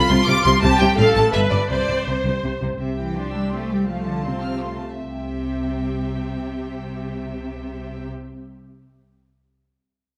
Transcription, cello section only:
0.09 0.16 C3 medium
0.27 0.34 C3 loud
0.45 0.52 C3 loud
0.62 0.69 C3 loud
0.80 0.87 C3 loud
0.97 1.04 A2 loud
1.15 1.22 A2 medium
1.33 1.40 G2 medium
1.51 1.59 G2 medium
1.70 1.77 C3 medium
1.88 1.95 C3 medium
2.06 2.13 C3 medium
2.24 2.32 C3 medium
2.43 2.50 C3 medium
2.61 2.68 C3 medium
2.80 2.96 C3 medium
2.98 3.15 E3 medium
3.16 3.34 F3 medium
3.34 3.41 G3 medium
3.52 3.70 A3 medium
3.70 3.88 G3 medium
3.88 4.06 F3 medium
4.07 4.25 D3 medium
4.25 4.82 C3 medium
5.01 8.08 C3 soft

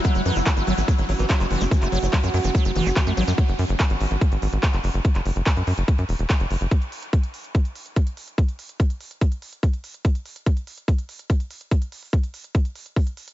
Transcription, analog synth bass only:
0.15 0.21 F#1 medium
0.26 0.31 F#2 loud
0.36 0.42 F#1 medium
0.57 0.63 G#1 medium
0.67 0.73 G#1 loud
0.78 0.83 G#1 loud
0.98 1.04 G#1 medium
1.09 1.15 G#1 medium
1.19 1.25 G#1 medium
1.40 1.46 F#1 medium
1.51 1.56 F#1 medium
1.61 1.67 F#1 medium
1.82 1.88 F#1 medium
1.92 1.98 F#1 loud
2.03 2.08 F#1 loud
2.23 2.29 F#2 medium
2.34 2.40 F#2 loud
2.44 2.50 F#1 medium
2.65 2.71 F#1 medium
2.76 2.81 F#1 loud
2.86 2.92 F#1 medium
3.07 3.13 F#2 medium
3.17 3.23 A1 loud
3.28 3.33 F#2 medium
3.48 3.54 F#1 medium
3.59 3.65 F#2 loud
3.69 3.75 F#1 loud
3.90 3.96 G#1 medium
4.01 4.06 G#1 loud
4.11 4.17 G#1 medium
4.32 4.38 G#1 medium
4.42 4.48 G#1 loud
4.53 4.58 G#1 medium
4.73 4.79 F#1 medium
4.84 4.90 F#1 loud
4.94 5.00 F#1 medium
5.15 5.21 F#1 medium
5.26 5.31 F#1 loud
5.36 5.42 F#1 medium
5.57 5.63 F#2 medium
5.67 5.73 F#2 loud
5.78 5.83 F#1 medium
5.98 6.04 F#2 medium
6.09 6.15 E1 loud
6.19 6.25 E1 medium
6.40 6.46 F#1 medium
6.51 6.56 F#1 loud
6.61 6.67 F#1 medium

